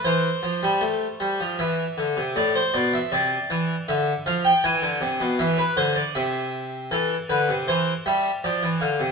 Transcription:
<<
  \new Staff \with { instrumentName = "Harpsichord" } { \time 3/4 \key a \minor \tempo 4 = 79 c''2 e''4 | d''16 c''16 d''16 e''16 d''4 e''8 f''16 g''16 | gis''4 e''16 b'16 c''16 d''16 e''4 | a'8 b'8 c''8 e''8 d''8 f''8 | }
  \new Staff \with { instrumentName = "Harpsichord" } { \clef bass \time 3/4 \key a \minor e8 f16 g16 a8 g16 f16 e8 d16 c16 | a,8 b,8 c8 e8 d8 f8 | e16 d16 c16 b,16 e8 d8 c4 | e8 d16 c16 e8 g8 f16 e16 d16 c16 | }
>>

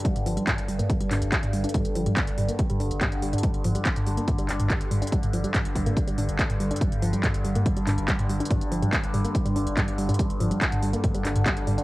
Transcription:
<<
  \new Staff \with { instrumentName = "Synth arpeggio sound" } { \clef bass \time 4/4 \key c \dorian \tempo 4 = 142 g16 r16 f16 g16 r8 g16 bes16 g16 g16 d'16 r16 g'16 r16 g16 d'16 | g16 r16 f16 g16 r8 g16 bes16 g16 g16 d'16 r16 g'16 r16 g16 d'16 | g16 r16 f16 g16 r8 g16 bes16 g16 g16 d'16 r16 g'16 r16 g16 d'16 | g16 r16 f16 g16 r8 g16 bes16 g16 g16 d'16 r16 g'16 r16 g16 d'16 |
g16 r16 f16 g16 r8 g16 bes16 g16 g16 d'16 r16 g16 r16 g16 d'16 | g16 r16 f16 g16 r8 g16 bes16 g16 g16 d'16 r16 g16 r16 g16 d'16 | g16 r16 f16 g16 r8 g16 bes16 g16 g16 d'16 r16 g16 r16 g16 d'16 | }
  \new Staff \with { instrumentName = "Synth drone" } { \clef bass \time 4/4 \key c \dorian <g, d>1~ | <g, d>1~ | <g, d>1~ | <g, d>1~ |
<g, d>1~ | <g, d>1~ | <g, d>1 | }
  \new Staff \with { instrumentName = "Sub bass" } { \clef bass \time 4/4 \key c \dorian r16 g,,16 g,,16 r8 g,,16 g,,16 r8 g,,16 g,,16 g,,16 r16 g,,16 g,,16 r16 | r16 g,,16 g,,16 r8 g,,16 g,,16 r8 g,,16 g,,16 g,,16 r16 g,,16 g,,16 r16 | r16 g,,16 g,,16 r8 g,,16 g,,16 r8 g,,16 g,,16 g,,16 r16 g,,16 g,,16 r16 | r16 g,,16 g,,16 r8 g,,16 g,,16 r8 g,,16 g,,16 g,,16 r16 g,,16 g,,16 r16 |
r16 g,,16 g,,16 r8 g,,16 g,,16 r8 g,,16 g,,16 g,,16 r16 g,,16 g,,16 r16 | r16 g,,16 g,,16 r8 g,,16 g,,16 r8 g,,16 g,,16 g,,16 r16 g,,16 g,,16 r16 | r16 g,,16 g,,16 r8 g,,16 g,,16 r8 g,,16 g,,16 g,,16 r16 g,,16 g,,16 r16 | }
  \new DrumStaff \with { instrumentName = "Drums" } \drummode { \time 4/4 <hh bd>16 <hh toml>16 hho16 hh16 <hc hh bd toml>16 hh16 hho16 <hh toml>16 <hh bd>16 hh16 <hc hho toml>16 hh16 <hc hh bd>16 <hh toml>16 hho16 hh32 hh32 | <hh bd toml>16 hh16 hho16 <hh toml>16 <hc hh bd>16 hh16 <hho toml>16 hh16 <hh bd>16 <hh toml>16 hho16 hh16 <hc hh bd toml>16 hh16 hho16 <hh toml>32 hh32 | <hh bd>16 hh16 <hho toml>16 hh16 <hc hh bd>16 <hh toml>16 hho16 hh16 <hh bd toml>16 hh16 <hc hho>16 <hh toml>16 <hc hh bd>16 hh16 <hho toml>16 hh32 hh32 | <hh bd>16 <hh toml>16 hho16 hh16 <hc hh bd toml>16 hh16 <hho bd>16 <hh toml>16 <hh bd>16 hh16 <hho toml>16 hh16 <hc hh bd>16 <hh toml>16 hho16 hh32 hh32 |
<hh bd>16 <hh toml>16 hho16 hh16 <hc hh bd toml>16 hh16 hho16 <hh toml>16 <hh bd>16 hh16 <hc hho toml>16 hh16 <hc hh bd>16 <hh toml>16 hho16 hh32 hh32 | <hh bd toml>16 hh16 hho16 <hh toml>16 <hc hh bd>16 hh16 <hho toml>16 hh16 <hh bd>16 <hh toml>16 hho16 hh16 <hc hh bd toml>16 hh16 hho16 <hh toml>32 hh32 | <hh bd>16 hh16 <hho toml>16 hh16 <hc hh bd>16 <hh toml>16 hho16 hh16 <hh bd toml>16 hh16 <hc hho>16 <hh toml>16 <hc hh bd>16 hh16 <hho toml>16 hh16 | }
>>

